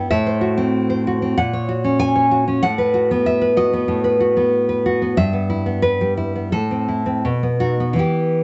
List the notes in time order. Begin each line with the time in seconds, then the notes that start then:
Already playing: B3 B4
0.11 A2 E5
0.27 C5
0.41 F#4
0.58 C4
0.90 C5
1.07 F#4
1.22 C4
1.38 A#2 F#5
1.53 C#5
1.69 F#4
1.84 C#4
1.99 G#5
2.16 C#5
2.31 F#4
2.48 C#4
2.63 A2 F#5
2.78 B4
2.94 F#4
3.11 B3
3.26 E5
3.42 B4
3.57 F#4 D#5
3.73 B3
3.88 A2
4.04 B4
4.20 F#4
4.37 B3
4.69 B4
4.86 F#4
5.02 B3
5.17 G2 E5
5.33 B3
5.50 E4
5.66 B3
5.82 B4
6.01 G3
6.17 E4
6.36 B3
6.52 A2 A4
6.71 C4
6.88 E4
7.06 C4
7.25 B2
7.43 B3
7.60 D#4 F#4
7.80 B3
7.93 E3 B3 E4
7.99 G4